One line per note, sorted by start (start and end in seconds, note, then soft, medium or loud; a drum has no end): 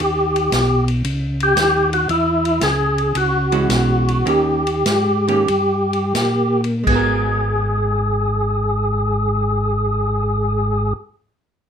0.00 0.51 D#2 medium
0.00 0.84 G4 medium
0.00 ride medium
0.36 ride soft
0.52 1.03 B1 medium
0.52 snare medium
0.52 hi-hat pedal medium
0.52 ride medium
0.88 ride soft
1.05 1.55 C#2 medium
1.05 ride medium
1.40 1.90 G4 loud
1.40 ride soft
1.56 2.07 D#2 medium
1.56 snare medium
1.56 hi-hat pedal medium
1.56 ride medium
1.93 2.08 F#4 medium
1.93 ride soft
2.09 2.60 E2 medium
2.09 2.63 E4 medium
2.09 ride medium
2.45 ride soft
2.61 3.13 C#2 medium
2.61 3.17 G#4 medium
2.61 snare medium
2.61 hi-hat pedal soft
2.61 ride medium
2.98 ride soft
3.15 3.68 C#2 medium
3.15 4.31 F#4 medium
3.15 ride medium
3.52 4.22 E3 medium
3.52 4.23 G#3 medium
3.52 4.23 C#4 medium
3.52 4.23 F#4 medium
3.52 ride soft
3.69 4.24 B1 medium
3.69 snare medium
3.69 hi-hat pedal medium
3.69 ride medium
4.08 ride soft
4.26 4.84 D#2 medium
4.26 4.62 D#3 medium
4.26 4.62 A#3 medium
4.26 4.62 C#4 medium
4.26 4.63 G4 medium
4.26 6.61 G4 medium
4.26 ride soft
4.67 ride soft
4.86 5.46 G#2 medium
4.86 snare medium
4.86 hi-hat pedal soft
4.86 ride medium
5.28 5.46 D#3 medium
5.28 5.46 A#3 medium
5.28 5.46 C#4 medium
5.28 5.47 G4 medium
5.28 ride soft
5.48 6.13 G2 medium
5.48 ride medium
5.93 ride soft
6.14 6.84 A#2 medium
6.14 snare medium
6.14 hi-hat pedal medium
6.14 ride medium
6.64 ride soft
6.84 10.93 G#1 medium
6.84 10.94 G#3 medium
6.84 10.93 G#4 medium
6.84 kick medium
6.84 crash medium
6.88 10.99 B3 medium
6.88 11.02 F#4 medium
6.96 11.06 A#4 medium